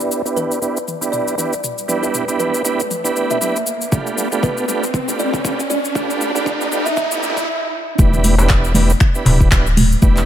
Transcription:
Already playing: B3 D4 E4 G4 B4, riser
0.00 shaker
0.12 shaker
0.25 B3 D4 E4 G4 B4, shaker
0.36 B4, mid tom, shaker
0.51 shaker
0.62 B3 D4 E4 G4 B4, shaker
0.77 shaker
0.88 mid tom, shaker
1.01 B3 D4 E4 G4 B4, shaker
1.12 D5, mid tom, shaker
1.28 shaker
1.37 B3 D4 E4 G4 B4, mid tom, shaker
1.53 shaker
1.64 mid tom, shaker
1.78 shaker
1.88 B3 D4 E4 G4 B4, mid tom, shaker
2.03 B4, shaker
2.14 mid tom, shaker
2.28 B3 D4 E4 G4 B4, shaker
2.39 B4, mid tom, shaker
2.54 shaker
2.65 B3 D4 E4 G4 B4, shaker
2.80 shaker
2.91 mid tom, shaker
3.04 B3 D4 E4 G4 B4, shaker
3.16 shaker
3.30 E5, mid tom, shaker
3.41 B3 D4 E4 G4 B4, mid tom, shaker
3.56 shaker
3.67 shaker
3.81 shaker
3.92 A3 D4 F4 G4 B4, kick, mid tom, shaker
4.07 shaker
4.18 mid tom, shaker
4.32 A3 D4 F4 G4 B4, shaker
4.43 B4, kick, mid tom, shaker
4.57 shaker
4.68 A3 D4 F4 G4 B4, mid tom, shaker
4.83 shaker
4.94 kick, mid tom, shaker
5.08 A3 D4 F4 G4 B4, shaker
5.19 D5, mid tom, shaker
5.34 kick, shaker
5.44 A3 D4 F4 G4 B4, kick, mid tom, shaker
5.60 shaker
5.70 D5, mid tom, shaker
5.85 shaker
5.95 A3 D4 F4 G4 B4, kick, mid tom, shaker
6.10 mid tom, shaker
6.21 mid tom, shaker
6.35 A3 D4 F4 G4 B4, mid tom, shaker
6.46 kick, mid tom, shaker
6.61 mid tom, shaker
6.72 A3 D4 F4 G4 B4, mid tom, shaker
6.86 E5, mid tom, shaker
6.96 E5, kick, mid tom, shaker
7.04 mid tom
7.11 A3 D4 F4 G4 B4, mid tom, shaker
7.17 mid tom
7.23 mid tom, shaker
7.30 mid tom
7.37 kick, mid tom, shaker
7.43 mid tom
7.98 E1 B3 D4 E4 G4 B4, kick, high conga, shaker
8.13 low conga, shaker
8.24 open hi-hat, high conga, shaker
8.38 B3 D4 E4 G4 B4, darbuka tek, shaker
8.50 finger snap, kick, clap, shaker
8.64 shaker
8.74 B3 D4 E4 G4 B4, open hi-hat, high conga, low conga, shaker
8.90 shaker
9.00 finger snap, kick, shaker
9.15 B3 D4 E4 G4 B4, shaker
9.25 D1, mid tom, open hi-hat, darbuka tek, darbuka dum, shaker
9.41 kick, shaker
9.51 B3 D4 E4 G4 B4, finger snap, kick, clap, shaker
9.67 shaker
9.77 mid tom, open hi-hat, high conga, shaker
9.92 shaker
10.02 E1 B3 D4 E4 G4 B4, kick, high conga, shaker
10.17 clap, shaker

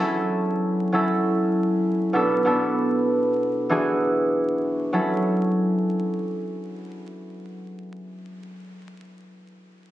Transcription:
Already playing: F#3 B3 C#4 F#4
0.00 E4 A4
0.92 F#3 C#4 E4 A4
2.13 B2 B3 D4 A4
2.45 B2 B3 D4 A4
3.69 E3 D4 F#4 G#4
4.93 F#3 C#4 E4 A4

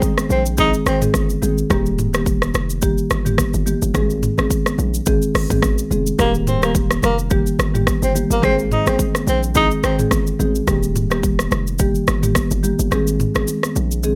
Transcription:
0.02 kick, low conga, shaker
0.18 cross-stick, high conga, shaker
0.29 A#1 C4, low conga, shaker
0.46 shaker
0.58 D#3 G#3 C4 D#4 G#4, kick, shaker
0.74 shaker
0.86 G#1 C4, cross-stick, shaker
1.01 D#3 G#3 C4 G#4, mid tom, shaker
1.14 G1, kick, cross-stick, high conga, shaker
1.30 shaker
1.42 G#1 D#3 G#3 C4 G#4, high conga, low conga, shaker
1.58 shaker
1.70 D#1 D#3 G3 A#3 G4, kick, cross-stick, low conga, shaker
1.86 shaker
1.99 mid tom, shaker
2.13 D#3 G3 A#3 G4, cross-stick, high conga, shaker
2.26 kick, low conga, shaker
2.42 cross-stick, high conga, shaker
2.54 F1, cross-stick, low conga, shaker
2.70 shaker
2.82 D#3 G3 A#3 G4, kick, shaker
2.98 shaker
3.11 G1, cross-stick, shaker
3.25 D#3 G3 A#3 G4, mid tom, shaker
3.38 kick, cross-stick, high conga, shaker
3.54 G1, shaker
3.66 D#3 G3 A#3 G4, high conga, low conga, shaker
3.82 G1, shaker
3.94 G#1 D#3 G#3 C4 G#4, kick, cross-stick, low conga, shaker
4.10 shaker
4.23 mid tom, shaker
4.38 G#1 D#3 G#3 C4 G#4, cross-stick, high conga, shaker
4.51 kick, shaker
4.66 cross-stick, high conga, shaker
4.78 A#1, low conga, shaker
4.94 shaker
5.06 G#1 D#3 G#3 C4 G#4, kick, shaker
5.22 shaker
5.35 G1, cross-stick, open hi-hat, shaker
5.50 G#1 D#3 G#3 C4 G#4, kick, mid tom, high conga, shaker
5.62 G#1, kick, cross-stick, high conga, shaker
5.78 shaker
5.91 F1 D#3 G#3 C4 G#4, high conga, low conga, shaker
6.07 shaker
6.19 D#1 D#3 G3 A#3 G4, kick, cross-stick, low conga, shaker
6.35 shaker
6.47 C4, mid tom, shaker
6.62 D#3 G3 A#3 G4, cross-stick, high conga, shaker
6.74 kick, low conga, shaker
6.91 cross-stick, high conga, shaker
7.02 F1 A#3, cross-stick, low conga, shaker
7.19 shaker
7.31 D#3 G3 A#3 G4, kick, shaker
7.47 shaker
7.59 G1, cross-stick, shaker
7.74 D#3 G3 A#3 G4, mid tom, shaker
7.87 kick, cross-stick, high conga, shaker
8.02 G1 C4, shaker
8.15 D#3 G3 A#3 G4, high conga, low conga, shaker
8.30 G1 A#3, shaker
8.43 G#1 D#3 G#3 C4 G#4, kick, cross-stick, low conga, shaker
8.59 shaker
8.72 D#4, mid tom, shaker
8.86 G#1 D#3 G#3 C4 G#4, cross-stick, high conga, shaker
8.99 kick, low conga, shaker
9.15 cross-stick, high conga, shaker
9.27 A#1 C4, low conga, shaker
9.43 shaker
9.55 D#3 G#3 C4 D#4 G#4, kick, shaker
9.71 shaker
9.84 G#1 C4, cross-stick, shaker
9.98 D#3 G#3 C4 G#4, mid tom, shaker
10.11 G1, kick, cross-stick, high conga, shaker
10.27 shaker
10.39 G#1 D#3 G#3 C4 G#4, high conga, low conga, shaker
10.55 shaker
10.67 D#1 D#3 G3 A#3 G4, kick, cross-stick, low conga, shaker
10.83 shaker
10.96 mid tom, shaker
11.10 D#3 G3 A#3 G4, cross-stick, high conga, shaker
11.23 kick, low conga, shaker
11.39 cross-stick, high conga, shaker
11.51 F1, cross-stick, low conga, shaker
11.67 shaker
11.79 D#3 G3 A#3 G4, kick, shaker
11.95 shaker
12.08 G1, cross-stick, shaker
12.23 D#3 G3 A#3 G4, mid tom, shaker
12.35 kick, cross-stick, high conga, shaker
12.51 G1, shaker
12.63 D#3 G3 A#3 G4, high conga, low conga, shaker
12.79 G1, shaker
12.91 G#1 D#3 G#3 C4 G#4, cross-stick, low conga, shaker
13.07 shaker
13.20 mid tom, shaker
13.35 G#1 D#3 G#3 C4 G#4, cross-stick, high conga, shaker
13.47 low conga, shaker
13.63 cross-stick, high conga, shaker
13.75 A#1, low conga, shaker
13.91 shaker
14.03 D#3 G#3 C4 G#4, shaker

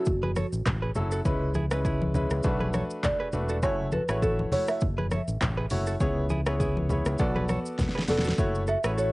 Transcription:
Already playing: F#4
0.06 F#1, kick, shaker
0.23 G#4 B4, high conga
0.36 A4 C#5, cross-stick, high conga, shaker
0.53 A1, shaker
0.66 A1, kick, cross-stick, clap, low conga, shaker
0.82 G#4 B4
0.95 F#1 F#3 C#4 E4 A4, low conga, shaker
1.12 F#4 A4, shaker
1.25 C#2 G#3 C#4 E4 B4, kick, shaker
1.54 E4 G#4, high conga, shaker
1.71 G#3 C#4 E4 G#4 B4, cross-stick, shaker
1.85 E4 G#4, kick, shaker
2.02 high conga
2.14 G#3 C#4 E4 B4, high conga, low conga, shaker
2.30 C#2, cross-stick, shaker
2.43 B1 A3 D4 F#4 B4, kick, shaker
2.60 G#4 B4, high conga
2.73 A4 C#5, cross-stick, high conga, shaker
2.90 shaker
3.03 D5, kick, cross-stick, clap, low conga, shaker
3.20 G#4 B4
3.32 E1 A3 D4 F#4 B4, low conga, shaker
3.49 F#4 A4, shaker
3.63 F#1 A3 E4 F#4 C#5, kick, shaker
3.92 F#4 A4 B4, high conga, shaker
4.08 A1 A3 E4 F#4 G#4 B4 C#5, cross-stick, shaker
4.22 F#4 A4, kick, shaker
4.39 high conga
4.52 A3 E4 F#4 C#5, open hi-hat, high conga, low conga, shaker
4.68 E5, cross-stick, shaker
4.81 F#1, kick, shaker
4.98 G#4 B4, high conga
5.11 A4 C#5, cross-stick, high conga, shaker
5.28 A1, shaker
5.41 A1, kick, cross-stick, clap, low conga, shaker
5.57 G#4 B4
5.70 F#1 A3 E4 F#4 C#5, open hi-hat, low conga, shaker
5.87 F#4 A4, shaker
6.00 C#2 B3 E4 G#4 C#5, kick, shaker
6.30 E4 G#4, high conga, shaker
6.46 B3 E4 G#4 B4 C#5, cross-stick, shaker
6.60 E4 G#4, kick, shaker
6.77 high conga
6.89 B3 E4 G#4 C#5, high conga, low conga, shaker
7.06 C#2, cross-stick, shaker
7.18 B1 B3 F#4 A4 D5, kick, shaker
7.36 G#4 B4, high conga
7.49 A4 C#5, cross-stick, high conga, shaker
7.66 shaker
7.79 kick, snare, high conga, low conga, shaker
7.89 snare
7.95 G#4 B4, snare
8.08 E1 B3 F#4 A4 D5, snare, open hi-hat, low conga, shaker
8.18 snare
8.24 F#4 A4, snare, shaker
8.38 F#1 A3 E4 F#4 C#5, kick, shaker
8.55 shaker
8.67 F#4 A4 E5, shaker
8.84 A1 A3 E4 F#4 G#4 B4 C#5, cross-stick, shaker
8.98 F#4 A4 C#5, shaker

